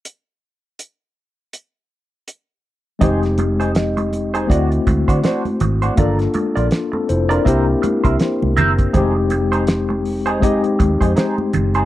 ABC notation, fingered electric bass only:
X:1
M:4/4
L:1/16
Q:"Swing 16ths" 1/4=81
K:Fm
V:1 name="Fingered electric bass" clef=bass
z16 | F,,,8 =D,,2 D,, =D, z2 A,,,2 | G,,,2 z B,,, z2 F,,,2 C,,2 z C,, z C,, _G,,,2 | F,,,8- F,,, z E,, F,, z2 _G,,,2 |]